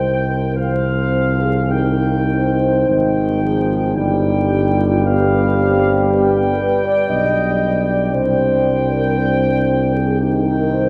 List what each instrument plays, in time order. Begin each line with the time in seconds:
Already playing: tuba C2, trombone D#3, euphonium C4, french horn section C5, trumpet section G5
0.30 french horn section A#4
0.56 trombone F3, french horn section C5, trumpet section F5
1.39 french horn section G#4
1.70 trombone D#3, euphonium D#4, french horn section G4, trumpet section G5
2.33 french horn section C5
2.89 tuba G#1, trombone D#3, trumpet section G5
3.43 trombone F3, french horn section G#4
3.95 tuba G1, trombone G3, french horn section G4, trumpet section G5
4.77 french horn section F4
5.03 euphonium B3, french horn section G4, trumpet section F5
5.58 euphonium C4
6.09 euphonium B3, trumpet section G5
6.58 french horn section B4
6.83 french horn section D5
7.08 tuba B1, euphonium D4, french horn section D#5
7.86 french horn section D5
8.12 tuba C2, french horn section C5, trumpet section G5
8.90 french horn section A#4
9.17 french horn section C5
9.94 french horn section G#4
10.18 trombone D#3, euphonium D#4, french horn section G4, trumpet section G5
10.43 french horn section A#4
10.70 french horn section C5